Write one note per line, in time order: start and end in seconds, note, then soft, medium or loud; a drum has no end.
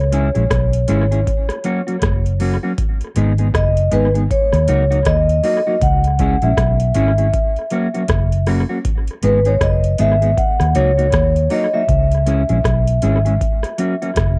0.00 0.29 C#2 loud
0.00 2.37 C#5 medium
0.12 0.28 G#3 medium
0.12 0.28 C#4 medium
0.12 0.28 E4 medium
0.12 0.28 G#4 loud
0.12 closed hi-hat medium
0.35 0.49 A#1 medium
0.35 0.44 G#3 medium
0.35 0.43 C#4 medium
0.35 0.43 E4 medium
0.35 0.43 G#4 medium
0.35 closed hi-hat soft
0.51 0.84 B1 medium
0.51 kick loud
0.51 cross-stick loud
0.51 closed hi-hat medium
0.73 closed hi-hat medium
0.88 1.23 G#1 medium
0.88 1.04 G#3 medium
0.88 1.04 C#4 loud
0.88 1.04 E4 medium
0.88 1.04 G#4 medium
0.88 closed hi-hat medium
1.11 1.20 G#3 soft
1.11 1.20 C#4 medium
1.11 1.20 E4 medium
1.11 1.19 G#4 medium
1.11 closed hi-hat soft
1.27 kick loud
1.27 closed hi-hat medium
1.49 cross-stick medium
1.49 closed hi-hat soft
1.64 1.80 F#3 medium
1.64 1.80 A#3 medium
1.64 1.80 C#4 medium
1.64 1.80 F#4 medium
1.64 closed hi-hat medium
1.87 1.96 F#3 medium
1.87 1.95 A#3 medium
1.87 1.95 C#4 medium
1.87 1.95 F#4 medium
1.87 closed hi-hat soft
2.02 2.56 F#1 medium
2.02 kick loud
2.02 cross-stick loud
2.02 closed hi-hat loud
2.26 closed hi-hat soft
2.40 2.55 F#3 medium
2.40 2.56 A#3 medium
2.40 2.56 C#4 medium
2.40 2.56 F#4 medium
2.40 open hi-hat medium
2.63 2.72 F#3 medium
2.63 2.71 A#3 medium
2.63 2.71 C#4 medium
2.63 2.71 F#4 medium
2.78 kick loud
2.78 closed hi-hat medium
3.01 closed hi-hat soft
3.16 3.50 G#1 medium
3.16 3.31 G#3 medium
3.16 3.32 B3 medium
3.16 3.32 D#4 medium
3.16 3.32 G#4 medium
3.16 closed hi-hat medium
3.38 3.47 G#3 soft
3.38 3.47 B3 medium
3.38 3.47 D#4 medium
3.38 3.47 G#4 medium
3.38 closed hi-hat soft
3.54 3.88 F#1 loud
3.54 3.94 D#5 medium
3.54 kick medium
3.54 cross-stick loud
3.54 closed hi-hat medium
3.77 closed hi-hat soft
3.91 4.26 G#1 medium
3.91 4.07 G#3 medium
3.91 4.07 B3 medium
3.91 4.07 D#4 medium
3.91 4.08 G#4 medium
3.91 4.10 B4 medium
3.91 closed hi-hat medium
4.14 4.23 G#3 soft
4.14 4.23 B3 soft
4.14 4.23 D#4 medium
4.14 4.22 G#4 medium
4.14 closed hi-hat soft
4.30 5.09 C#5 medium
4.30 kick loud
4.30 closed hi-hat medium
4.52 4.66 D#2 loud
4.52 cross-stick medium
4.52 closed hi-hat soft
4.67 5.02 C#2 medium
4.67 4.83 F#3 medium
4.67 4.83 A#3 medium
4.67 4.83 D#4 medium
4.67 4.84 F#4 medium
4.67 closed hi-hat medium
4.90 4.99 F#3 medium
4.90 4.99 A#3 medium
4.90 4.99 D#4 medium
4.90 4.98 F#4 medium
4.90 closed hi-hat soft
5.05 5.40 D#2 loud
5.05 5.43 D#5 medium
5.05 kick loud
5.05 cross-stick loud
5.05 closed hi-hat medium
5.29 closed hi-hat soft
5.43 5.59 F#3 medium
5.43 5.59 A#3 medium
5.43 5.59 D#4 medium
5.43 5.60 F#4 medium
5.43 5.79 D#5 medium
5.43 open hi-hat medium
5.67 5.75 F#3 medium
5.67 5.75 A#3 medium
5.67 5.75 D#4 medium
5.67 5.75 F#4 medium
5.82 6.36 C#2 medium
5.82 6.45 F#5 loud
5.82 kick loud
5.82 closed hi-hat medium
6.04 closed hi-hat soft
6.19 6.35 G#3 medium
6.19 6.35 C#4 medium
6.19 6.36 E4 medium
6.19 6.36 G#4 medium
6.19 kick medium
6.19 closed hi-hat medium
6.42 6.56 A#1 medium
6.42 6.51 G#3 soft
6.42 6.51 C#4 soft
6.42 6.50 E4 medium
6.42 6.50 G#4 medium
6.42 8.44 E5 medium
6.42 closed hi-hat soft
6.57 6.91 B1 loud
6.57 kick loud
6.57 cross-stick loud
6.57 closed hi-hat medium
6.80 closed hi-hat medium
6.95 7.29 G#1 medium
6.95 7.10 G#3 medium
6.95 7.11 C#4 loud
6.95 7.11 E4 medium
6.95 7.11 G#4 loud
6.95 closed hi-hat medium
7.18 7.27 G#3 soft
7.18 7.27 C#4 soft
7.18 7.26 E4 medium
7.18 7.26 G#4 medium
7.18 closed hi-hat soft
7.34 kick loud
7.34 closed hi-hat medium
7.56 closed hi-hat medium
7.70 7.86 F#3 medium
7.70 7.87 A#3 medium
7.70 7.87 C#4 medium
7.70 7.87 F#4 medium
7.70 closed hi-hat medium
7.94 8.03 F#3 medium
7.94 8.03 A#3 medium
7.94 8.02 C#4 medium
7.94 8.02 F#4 medium
7.94 closed hi-hat soft
8.08 8.63 F#1 loud
8.08 kick loud
8.08 cross-stick loud
8.08 closed hi-hat loud
8.32 closed hi-hat soft
8.47 8.62 F#3 medium
8.47 8.63 A#3 medium
8.47 8.63 C#4 medium
8.47 8.63 F#4 medium
8.47 cross-stick medium
8.47 open hi-hat medium
8.69 8.78 F#3 soft
8.69 8.78 A#3 medium
8.69 8.78 C#4 medium
8.69 8.78 F#4 medium
8.85 kick loud
8.85 closed hi-hat medium
9.07 closed hi-hat soft
9.23 9.57 G#1 loud
9.23 9.38 G#3 medium
9.23 9.38 B3 medium
9.23 9.39 D#4 medium
9.23 9.39 G#4 loud
9.23 9.47 B4 medium
9.23 closed hi-hat medium
9.45 9.54 G#3 soft
9.45 9.54 B3 medium
9.45 9.54 D#4 medium
9.45 9.54 G#4 medium
9.45 9.62 C#5 medium
9.45 closed hi-hat soft
9.61 9.95 F#1 medium
9.61 10.01 D#5 medium
9.61 kick medium
9.61 cross-stick loud
9.61 closed hi-hat medium
9.84 closed hi-hat medium
9.98 10.33 G#1 medium
9.98 10.14 G#3 medium
9.98 10.14 B3 medium
9.98 10.15 D#4 medium
9.98 10.15 G#4 medium
9.98 10.39 E5 medium
9.98 closed hi-hat medium
10.22 10.30 G#3 soft
10.22 10.30 B3 medium
10.22 10.30 D#4 medium
10.22 10.30 G#4 medium
10.22 closed hi-hat soft
10.38 10.76 F#5 loud
10.38 kick loud
10.38 closed hi-hat medium
10.60 10.73 D#2 medium
10.60 cross-stick medium
10.60 closed hi-hat soft
10.75 11.09 C#2 medium
10.75 10.90 F#3 medium
10.75 10.90 A#3 medium
10.75 10.91 D#4 loud
10.75 10.91 F#4 loud
10.75 11.53 C#5 loud
10.75 closed hi-hat medium
10.97 11.06 F#3 medium
10.97 11.06 A#3 medium
10.97 11.06 D#4 medium
10.97 11.05 F#4 medium
10.97 closed hi-hat soft
11.12 11.47 D#2 loud
11.12 kick loud
11.12 cross-stick loud
11.12 closed hi-hat loud
11.36 closed hi-hat soft
11.50 11.66 F#3 medium
11.50 11.66 A#3 medium
11.50 11.66 D#4 medium
11.50 11.66 F#4 medium
11.50 11.75 D#5 loud
11.50 open hi-hat medium
11.73 11.82 F#3 medium
11.73 11.82 A#3 medium
11.73 11.82 D#4 medium
11.73 11.81 F#4 medium
11.73 14.39 E5 medium
11.89 12.43 C#2 loud
11.89 kick loud
11.89 closed hi-hat medium
12.11 closed hi-hat soft
12.26 12.42 G#3 medium
12.26 12.42 C#4 medium
12.26 12.42 E4 medium
12.26 12.42 G#4 medium
12.26 closed hi-hat medium
12.49 12.63 A#1 medium
12.49 12.58 G#3 soft
12.49 12.58 C#4 medium
12.49 12.58 E4 medium
12.49 12.57 G#4 medium
12.49 closed hi-hat soft
12.64 12.98 B1 loud
12.64 kick medium
12.64 cross-stick medium
12.64 closed hi-hat medium
12.88 closed hi-hat medium
13.02 13.37 G#1 medium
13.02 13.18 G#3 medium
13.02 13.18 C#4 medium
13.02 13.18 E4 medium
13.02 13.19 G#4 medium
13.02 closed hi-hat medium
13.25 13.34 G#3 medium
13.25 13.34 C#4 medium
13.25 13.34 E4 medium
13.25 13.33 G#4 medium
13.25 closed hi-hat soft
13.41 kick loud
13.41 closed hi-hat medium
13.63 cross-stick medium
13.63 closed hi-hat medium
13.78 13.94 F#3 medium
13.78 13.94 A#3 medium
13.78 13.94 C#4 medium
13.78 13.94 F#4 medium
13.78 closed hi-hat medium
14.02 14.10 F#3 medium
14.02 14.10 A#3 medium
14.02 14.10 C#4 medium
14.02 14.09 F#4 medium
14.02 closed hi-hat soft
14.16 14.39 F#1 medium
14.16 kick loud
14.16 cross-stick loud
14.16 closed hi-hat loud